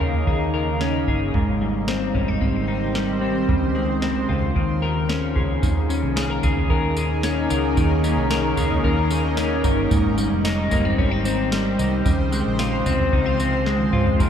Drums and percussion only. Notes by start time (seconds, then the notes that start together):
0.01 floor tom
0.14 floor tom
0.27 kick, floor tom
0.81 snare
1.08 kick
1.34 kick, floor tom
1.88 snare
2.15 kick, floor tom
2.28 floor tom
2.42 kick, floor tom
2.95 snare
3.49 kick, floor tom
4.02 snare
4.29 floor tom
4.42 floor tom
4.56 kick, floor tom
5.09 snare
5.36 kick, floor tom
5.63 kick, floor tom, tambourine
5.90 tambourine
6.17 snare, tambourine
6.43 kick, floor tom, tambourine
6.56 floor tom
6.70 kick, floor tom
6.97 tambourine
7.23 snare, tambourine
7.50 tambourine
7.77 kick, floor tom, tambourine
8.04 tambourine
8.30 snare, tambourine
8.57 floor tom, tambourine
8.70 floor tom
8.84 kick, floor tom
9.11 tambourine
9.37 snare, tambourine
9.64 kick, tambourine
9.91 kick, floor tom, tambourine
10.18 tambourine
10.45 snare, tambourine
10.71 kick, floor tom, tambourine
10.85 floor tom
10.99 kick, floor tom
11.25 tambourine
11.52 snare, tambourine
11.79 tambourine
12.06 kick, floor tom, tambourine
12.32 tambourine
12.59 snare, tambourine
12.86 floor tom, tambourine
12.99 floor tom
13.13 kick, floor tom
13.40 tambourine
13.66 snare
13.80 high tom
13.93 mid tom
14.07 floor tom
14.20 kick, floor tom, tambourine